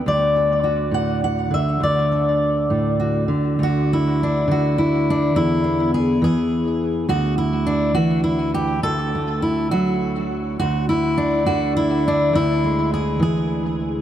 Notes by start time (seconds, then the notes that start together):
0.06 D2 D5
0.36 A4
0.64 F#4
0.91 A2 F#5
1.24 F#5
1.51 D3 E5
1.80 D2 D5
2.12 A4
2.70 A2
3.00 F#4
3.28 D3
3.59 D2
3.63 F#4
3.93 E4
4.23 D4
4.48 D3 F#4
4.78 E4
5.10 D4
5.34 E2 E4
5.64 B3
5.94 G#4
6.22 E3 G#4
7.09 D2 F#4
7.38 E4
7.66 D4
7.95 E3 F#4
8.24 E4
8.54 G4
8.83 D2 A4
9.15 A3
9.42 E4
9.71 F#3 F#4
10.59 D2 F#4
10.89 E4
11.18 D4
11.46 D3 F#4
11.77 E4
12.08 D4
12.33 D2 E4
12.64 G#3
12.94 G#4
13.19 E3 G#4